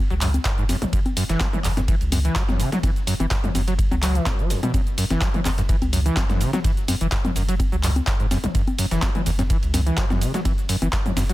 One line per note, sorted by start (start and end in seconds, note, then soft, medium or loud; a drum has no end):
0.00 downlifter medium
0.10 0.39 C#2 loud
0.10 0.14 F#3 medium
0.10 closed hi-hat soft
0.10 shaker soft
0.21 0.29 F#2 loud
0.21 clap medium
0.21 open hi-hat loud
0.21 ride medium
0.21 shaker medium
0.34 closed hi-hat medium
0.34 high conga medium
0.34 shaker soft
0.45 0.74 F#1 loud
0.45 kick loud
0.45 snare loud
0.45 clap loud
0.45 closed hi-hat medium
0.45 ride medium
0.45 shaker soft
0.58 0.64 G#2 medium
0.58 closed hi-hat soft
0.58 shaker soft
0.69 0.76 F#2 medium
0.69 snare soft
0.69 open hi-hat loud
0.69 ride medium
0.69 high conga medium
0.69 shaker medium
0.82 0.86 F#1 loud
0.82 closed hi-hat medium
0.82 mid tom medium
0.82 shaker soft
0.93 1.01 F#1 loud
0.93 1.00 F#2 medium
0.93 kick loud
0.93 closed hi-hat medium
0.93 ride medium
0.93 shaker soft
1.06 closed hi-hat soft
1.06 high conga medium
1.06 shaker soft
1.17 1.24 F#2 loud
1.17 open hi-hat loud
1.17 ride medium
1.17 shaker medium
1.29 1.36 F#1 medium
1.29 1.42 E3 medium
1.29 snare medium
1.29 closed hi-hat medium
1.29 shaker soft
1.40 1.48 F#3 loud
1.40 kick loud
1.40 snare loud
1.40 clap loud
1.40 closed hi-hat medium
1.40 ride medium
1.40 high conga medium
1.40 shaker soft
1.53 1.59 E3 medium
1.53 closed hi-hat soft
1.53 mid tom loud
1.53 shaker soft
1.64 1.93 F#1 medium
1.64 1.69 E2 loud
1.64 clap medium
1.64 open hi-hat loud
1.64 ride medium
1.64 shaker medium
1.77 1.81 F#2 loud
1.77 snare soft
1.77 closed hi-hat medium
1.77 high conga medium
1.77 shaker soft
1.88 1.95 E3 medium
1.88 kick loud
1.88 closed hi-hat medium
1.88 ride medium
1.88 shaker soft
2.01 2.29 C#2 medium
2.01 closed hi-hat soft
2.01 ride soft
2.01 shaker soft
2.12 2.19 F#2 loud
2.12 open hi-hat loud
2.12 ride medium
2.12 high conga medium
2.12 shaker medium
2.25 2.37 E3 medium
2.25 closed hi-hat medium
2.25 shaker soft
2.36 2.65 F#1 medium
2.36 2.43 F#3 loud
2.36 kick loud
2.36 snare loud
2.36 clap loud
2.36 closed hi-hat medium
2.36 ride medium
2.36 shaker soft
2.48 2.61 F#2 medium
2.48 snare soft
2.48 closed hi-hat soft
2.48 mid tom loud
2.48 high conga medium
2.48 shaker soft
2.59 2.70 C#3 medium
2.59 open hi-hat loud
2.59 ride medium
2.59 shaker medium
2.72 2.78 F#3 medium
2.72 snare medium
2.72 closed hi-hat medium
2.72 mid tom loud
2.72 shaker soft
2.83 2.91 F#1 loud
2.83 2.90 E3 medium
2.83 kick loud
2.83 closed hi-hat medium
2.83 ride medium
2.83 high conga medium
2.83 shaker soft
2.96 closed hi-hat soft
2.96 shaker soft
3.07 3.14 F#2 loud
3.07 open hi-hat loud
3.07 ride medium
3.07 shaker medium
3.20 3.27 F#1 medium
3.20 3.26 E3 medium
3.20 closed hi-hat medium
3.20 high conga medium
3.20 shaker soft
3.31 3.35 F#2 medium
3.31 kick loud
3.31 snare loud
3.31 clap loud
3.31 closed hi-hat medium
3.31 ride medium
3.31 shaker soft
3.44 3.50 F#2 medium
3.44 closed hi-hat soft
3.44 mid tom loud
3.44 shaker soft
3.55 3.84 F#1 medium
3.55 3.62 F#2 medium
3.55 open hi-hat loud
3.55 ride medium
3.55 high conga medium
3.55 shaker medium
3.68 3.74 F#3 medium
3.68 closed hi-hat soft
3.68 ride soft
3.68 shaker soft
3.79 kick loud
3.79 closed hi-hat medium
3.79 ride medium
3.79 shaker soft
3.91 4.19 C#2 medium
3.91 3.95 F#3 medium
3.91 closed hi-hat soft
3.91 high conga medium
3.91 shaker soft
4.02 4.17 F#3 loud
4.02 clap medium
4.02 open hi-hat loud
4.02 ride medium
4.02 shaker medium
4.15 4.28 E3 loud
4.15 closed hi-hat medium
4.15 shaker soft
4.26 4.55 F#1 loud
4.26 4.41 F#2 medium
4.26 kick loud
4.26 snare loud
4.26 clap loud
4.26 closed hi-hat medium
4.26 ride medium
4.26 high conga medium
4.26 shaker soft
4.39 4.52 F#3 loud
4.39 closed hi-hat soft
4.39 shaker soft
4.50 4.61 E2 medium
4.50 snare soft
4.50 open hi-hat loud
4.50 ride medium
4.50 shaker medium
4.63 4.72 B2 medium
4.63 closed hi-hat medium
4.63 mid tom loud
4.63 high conga medium
4.63 shaker soft
4.74 4.82 F#1 loud
4.74 4.81 F#2 medium
4.74 kick loud
4.74 closed hi-hat medium
4.74 ride medium
4.74 high conga medium
4.74 shaker soft
4.87 closed hi-hat soft
4.87 shaker soft
4.98 5.05 F#2 loud
4.98 open hi-hat loud
4.98 ride medium
4.98 shaker medium
5.10 5.17 F#1 medium
5.10 5.23 E3 medium
5.10 snare medium
5.10 closed hi-hat medium
5.10 high conga medium
5.10 shaker soft
5.21 5.29 F#3 loud
5.21 kick loud
5.21 snare loud
5.21 clap loud
5.21 closed hi-hat medium
5.21 ride medium
5.21 shaker soft
5.34 5.40 E3 medium
5.34 closed hi-hat soft
5.34 mid tom loud
5.34 shaker soft
5.45 5.74 F#1 medium
5.45 5.50 E2 loud
5.45 clap medium
5.45 open hi-hat medium
5.45 ride medium
5.45 high conga medium
5.45 shaker medium
5.58 5.62 F#2 loud
5.58 snare soft
5.58 closed hi-hat medium
5.58 shaker soft
5.69 5.76 E3 medium
5.69 kick loud
5.69 closed hi-hat medium
5.69 ride medium
5.69 shaker soft
5.82 6.10 C#2 medium
5.82 closed hi-hat soft
5.82 ride soft
5.82 high conga medium
5.82 shaker soft
5.93 6.00 F#2 loud
5.93 open hi-hat loud
5.93 ride medium
5.93 shaker medium
6.06 6.18 E3 medium
6.06 closed hi-hat medium
6.06 shaker soft
6.17 6.46 F#1 medium
6.17 6.24 F#3 loud
6.17 kick loud
6.17 snare loud
6.17 clap loud
6.17 closed hi-hat medium
6.17 ride medium
6.17 high conga medium
6.17 shaker soft
6.29 6.42 F#2 medium
6.29 snare medium
6.29 closed hi-hat soft
6.29 mid tom loud
6.29 shaker soft
6.41 6.51 C#3 medium
6.41 open hi-hat medium
6.41 ride medium
6.41 shaker medium
6.53 6.59 F#3 medium
6.53 snare medium
6.53 closed hi-hat soft
6.53 mid tom loud
6.53 high conga medium
6.53 shaker soft
6.64 6.72 F#1 loud
6.64 6.71 E3 medium
6.64 kick loud
6.64 closed hi-hat medium
6.64 ride medium
6.64 shaker soft
6.77 closed hi-hat soft
6.77 shaker soft
6.88 6.95 F#2 loud
6.88 open hi-hat loud
6.88 ride medium
6.88 high conga medium
6.88 shaker medium
7.01 7.08 F#1 medium
7.01 7.07 E3 medium
7.01 closed hi-hat medium
7.01 shaker soft
7.12 7.16 F#2 medium
7.12 kick loud
7.12 snare loud
7.12 clap loud
7.12 closed hi-hat medium
7.12 ride medium
7.12 shaker soft
7.25 7.31 F#2 medium
7.25 closed hi-hat soft
7.25 mid tom loud
7.25 high conga medium
7.25 shaker soft
7.36 7.65 F#1 medium
7.36 7.43 F#2 medium
7.36 open hi-hat medium
7.36 ride medium
7.36 shaker medium
7.48 7.55 F#3 medium
7.48 closed hi-hat medium
7.48 ride soft
7.48 shaker soft
7.60 kick loud
7.60 closed hi-hat medium
7.60 ride medium
7.60 high conga medium
7.60 shaker soft
7.72 8.01 C#2 medium
7.72 7.76 F#3 medium
7.72 closed hi-hat soft
7.72 shaker soft
7.83 7.90 F#2 loud
7.83 clap medium
7.83 open hi-hat loud
7.83 ride medium
7.83 shaker medium
7.96 closed hi-hat medium
7.96 high conga medium
7.96 shaker soft
8.07 8.36 F#1 medium
8.07 kick loud
8.07 snare loud
8.07 clap loud
8.07 closed hi-hat medium
8.07 ride medium
8.07 shaker soft
8.20 8.26 G#2 medium
8.20 closed hi-hat soft
8.20 shaker soft
8.31 8.38 F#2 medium
8.31 snare soft
8.31 open hi-hat medium
8.31 ride medium
8.31 high conga medium
8.31 shaker medium
8.44 8.47 F#1 loud
8.44 closed hi-hat medium
8.44 mid tom medium
8.44 shaker soft
8.55 8.63 F#1 loud
8.55 8.62 F#2 medium
8.55 kick loud
8.55 closed hi-hat medium
8.55 ride medium
8.55 shaker soft
8.67 closed hi-hat soft
8.67 high conga medium
8.67 shaker soft
8.79 8.86 F#2 loud
8.79 open hi-hat loud
8.79 ride medium
8.79 shaker medium
8.91 8.98 F#1 medium
8.91 9.04 E3 medium
8.91 snare medium
8.91 closed hi-hat medium
8.91 shaker soft
9.02 9.09 F#3 loud
9.02 kick loud
9.02 snare loud
9.02 clap loud
9.02 closed hi-hat medium
9.02 ride medium
9.02 high conga medium
9.02 shaker soft
9.15 9.21 E3 medium
9.15 closed hi-hat soft
9.15 mid tom medium
9.15 shaker soft
9.26 9.55 F#1 medium
9.26 9.30 E2 loud
9.26 open hi-hat medium
9.26 ride medium
9.26 shaker medium
9.39 9.43 F#2 loud
9.39 snare soft
9.39 closed hi-hat medium
9.39 high conga medium
9.39 shaker soft
9.50 9.57 E3 medium
9.50 kick loud
9.50 closed hi-hat medium
9.50 ride medium
9.50 shaker soft
9.63 9.91 C#2 loud
9.63 closed hi-hat soft
9.63 ride soft
9.63 shaker soft
9.74 9.81 F#2 loud
9.74 open hi-hat loud
9.74 ride medium
9.74 high conga medium
9.74 shaker medium
9.86 9.99 E3 medium
9.86 closed hi-hat medium
9.86 shaker soft
9.98 10.26 F#1 medium
9.98 10.05 F#3 loud
9.98 kick loud
9.98 snare loud
9.98 clap loud
9.98 closed hi-hat medium
9.98 ride medium
9.98 shaker soft
10.10 10.23 F#2 medium
10.10 snare soft
10.10 closed hi-hat soft
10.10 mid tom medium
10.10 high conga medium
10.10 shaker soft
10.21 10.32 C#3 medium
10.21 open hi-hat medium
10.21 ride medium
10.21 shaker medium
10.34 10.40 F#3 medium
10.34 snare medium
10.34 closed hi-hat medium
10.34 mid tom medium
10.34 shaker soft
10.45 10.53 F#1 loud
10.45 10.52 E3 medium
10.45 kick loud
10.45 closed hi-hat medium
10.45 ride medium
10.45 high conga medium
10.45 shaker soft
10.58 closed hi-hat soft
10.58 shaker soft
10.69 10.76 F#2 loud
10.69 open hi-hat loud
10.69 ride medium
10.69 shaker medium
10.82 10.89 F#1 medium
10.82 10.88 E3 medium
10.82 closed hi-hat medium
10.82 high conga medium
10.82 shaker soft
10.93 10.97 F#2 medium
10.93 kick loud
10.93 snare loud
10.93 clap loud
10.93 closed hi-hat medium
10.93 ride medium
10.93 shaker soft
11.05 11.12 F#2 medium
11.05 closed hi-hat soft
11.05 mid tom medium
11.05 shaker soft
11.17 11.33 F#1 medium
11.17 11.24 F#2 medium
11.17 snare loud
11.17 open hi-hat medium
11.17 ride medium
11.17 high conga medium
11.17 shaker medium
11.29 11.33 F#3 medium
11.29 closed hi-hat medium
11.29 shaker soft